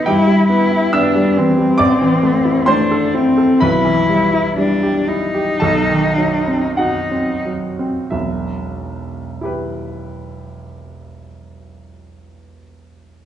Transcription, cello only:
0.06 0.48 E4 medium
0.49 0.95 E4 medium
0.93 1.39 D4 medium
1.37 2.69 C4 medium
2.67 3.16 D4 medium
3.14 3.62 C4 medium
3.60 4.57 E4 medium
4.58 5.10 D4 medium
5.08 6.77 D#4 medium
6.78 7.44 D#4 soft

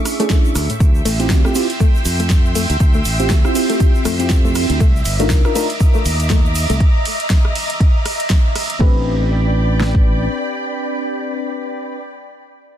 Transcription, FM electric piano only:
0.00 0.16 C#4 medium
0.00 0.17 D4 medium
0.00 0.17 E4 medium
0.00 0.17 G#4 medium
0.19 0.54 C#4 medium
0.19 0.54 D4 medium
0.19 0.54 E4 medium
0.19 0.54 G#4 medium
1.19 1.41 C4 medium
1.19 1.41 E4 medium
1.19 1.41 F4 medium
1.19 1.42 G4 loud
1.44 1.53 C4 medium
1.44 1.53 E4 medium
1.44 1.53 F4 medium
1.44 1.53 G4 loud
1.55 1.67 C4 loud
1.55 1.67 E4 medium
1.55 1.67 F4 medium
1.55 1.67 G4 loud
3.19 3.34 C4 medium
3.19 3.34 E4 medium
3.19 3.34 F4 medium
3.19 3.34 G4 medium
3.44 3.53 C4 medium
3.44 3.53 E4 medium
3.44 3.53 F4 medium
3.44 3.53 G4 medium
3.55 4.16 C4 medium
3.55 4.17 E4 medium
3.55 4.17 F4 medium
3.55 4.17 G4 medium
4.19 4.79 C4 medium
4.19 4.79 E4 medium
4.19 4.79 F4 medium
4.19 4.80 G4 medium
5.19 5.41 D4 medium
5.19 5.41 D#4 medium
5.19 5.41 F4 medium
5.19 5.42 A#4 loud
5.44 5.53 D4 medium
5.44 5.53 D#4 medium
5.44 5.53 F4 medium
5.44 5.53 A#4 loud
5.55 5.67 D4 loud
5.55 5.67 D#4 medium
5.55 5.67 F4 medium
5.55 5.67 A#4 loud
8.79 11.97 C4 medium
8.79 11.98 D4 medium
8.79 11.99 G4 medium
8.79 12.00 B4 loud

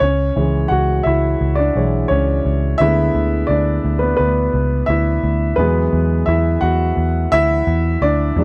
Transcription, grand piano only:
0.00 0.36 C#4 medium
0.00 0.66 C#5 medium
0.36 0.82 E3 medium
0.36 0.83 G#3 soft
0.36 0.83 C#4 medium
0.68 0.79 F#4 medium
0.68 0.76 F#5 medium
1.03 1.55 E4 medium
1.03 1.58 E5 medium
1.55 2.07 D4 medium
1.55 2.05 D5 medium
1.76 2.07 E3 soft
1.76 2.07 G#3 soft
1.76 2.07 C#5 medium
2.08 2.76 C#4 medium
2.08 2.75 C#5 medium
2.78 3.26 D3 medium
2.78 3.27 G#3 medium
2.78 3.27 B3 medium
2.78 3.46 E4 medium
2.78 3.51 E5 loud
3.47 3.99 D4 medium
3.47 4.02 D5 medium
3.99 4.18 B3 medium
3.99 4.15 B4 medium
4.17 4.85 B3 medium
4.17 4.84 B4 medium
4.86 5.38 E4 medium
4.86 5.36 E5 medium
5.56 6.05 E3 medium
5.56 6.05 F#3 soft
5.56 6.05 G#3 medium
5.56 6.25 B3 medium
5.56 6.29 B4 medium
6.26 6.61 E4 medium
6.26 6.63 E5 medium
6.61 7.98 F#4 medium
6.61 7.97 F#5 medium
7.32 7.99 E4 medium
7.32 7.98 E5 loud
8.02 8.37 D4 medium
8.02 8.44 D5 medium
8.37 8.44 F#3 medium
8.37 8.44 G#3 medium
8.37 8.44 D4 medium

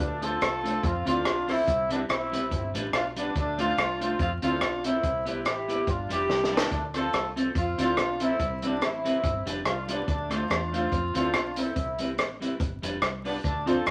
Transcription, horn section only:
0.00 0.22 A3 medium
0.00 0.22 D4 medium
0.23 0.83 F4 medium
0.23 0.84 A4 loud
0.85 1.07 C4 medium
0.85 1.06 F4 medium
1.08 1.46 D4 medium
1.08 1.46 F4 loud
1.49 1.88 C4 medium
1.49 1.88 E4 loud
1.92 2.00 B3 medium
1.92 2.00 D4 medium
2.10 2.71 C4 medium
2.10 2.71 E4 loud
2.95 3.05 D4 medium
2.95 3.05 F4 medium
3.18 3.35 B3 medium
3.18 3.35 D4 medium
3.37 3.58 A3 medium
3.37 3.58 D4 medium
3.60 3.98 D4 medium
3.60 3.98 F4 loud
4.02 4.19 D4 medium
4.02 4.19 F4 medium
4.21 4.31 C4 medium
4.21 4.31 F4 medium
4.43 4.82 D4 medium
4.43 4.82 F4 loud
4.86 5.26 C4 medium
4.86 5.26 E4 loud
5.27 5.45 C4 medium
5.27 5.45 E4 medium
5.46 5.88 E4 medium
5.46 5.88 G4 medium
5.89 6.11 D4 medium
5.89 6.11 F4 medium
6.12 6.50 E4 medium
6.12 6.51 G4 loud
6.54 6.71 B3 medium
6.54 6.71 D4 medium
6.73 6.83 A3 medium
6.73 6.83 D4 medium
6.95 7.28 F4 medium
6.95 7.28 A4 loud
7.58 7.78 C4 medium
7.58 7.78 F4 medium
7.81 8.19 D4 medium
7.81 8.19 F4 loud
8.23 8.61 C4 medium
8.23 8.61 E4 loud
8.65 8.83 B3 medium
8.65 8.83 D4 medium
8.84 9.48 C4 medium
8.84 9.48 E4 medium
9.67 9.88 D4 medium
9.67 9.88 F4 medium
9.90 10.09 B3 medium
9.90 10.08 D4 medium
10.09 10.30 A3 medium
10.09 10.30 D4 medium
10.32 10.74 D4 medium
10.32 10.73 F4 loud
10.74 11.13 C4 medium
10.74 11.13 F4 loud
11.16 11.55 D4 medium
11.16 11.55 F4 medium
11.58 12.00 C4 medium
11.58 11.99 E4 medium
13.26 13.35 B3 medium
13.26 13.34 D4 medium
13.45 13.67 A3 medium
13.45 13.66 D4 medium
13.67 13.91 F4 medium
13.67 13.91 A4 loud

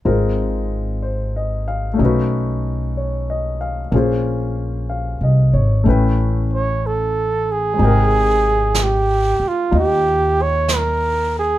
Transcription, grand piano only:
0.05 1.99 G#3 soft
0.05 2.00 C4 soft
0.05 1.97 D#4 soft
0.05 2.00 F4 soft
0.05 2.00 A#4 soft
1.02 1.63 C5 soft
1.36 1.86 D#5 soft
1.68 2.17 F5 soft
1.94 3.89 A3 soft
1.94 3.91 C#4 soft
1.99 3.92 D#4 soft
1.99 3.93 F#4 soft
2.05 3.95 B4 soft
2.97 3.56 C#5 soft
3.30 3.79 D#5 soft
3.61 4.10 F5 soft
3.91 5.85 A#3 soft
3.91 5.84 C#4 soft
3.91 5.86 F4 soft
3.91 5.87 G#4 soft
3.96 5.87 C5 soft
4.89 5.49 F5 soft
5.23 5.72 D#5 soft
5.53 6.03 C#5 soft
5.84 7.78 A3 soft
5.84 7.79 C#4 soft
5.84 7.79 E4 soft
5.84 7.80 G5 soft
5.89 7.81 B4 soft
7.74 11.58 C3 soft
7.74 11.58 G#3 soft
7.79 9.70 D#4 soft
7.79 11.58 G5 soft
7.85 11.58 A#4 soft
9.71 11.58 D#4 soft
9.71 11.58 F4 soft
9.71 11.58 D#5 soft

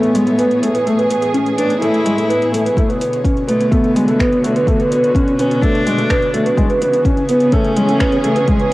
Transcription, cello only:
0.00 0.86 B3 loud
1.57 1.80 D4 medium
1.81 2.73 E4 loud
3.48 3.73 A3 medium
3.72 4.67 B3 loud
5.38 5.64 C#4 medium
5.62 6.58 D4 loud
7.29 7.53 B3 medium
7.52 8.48 C#4 loud

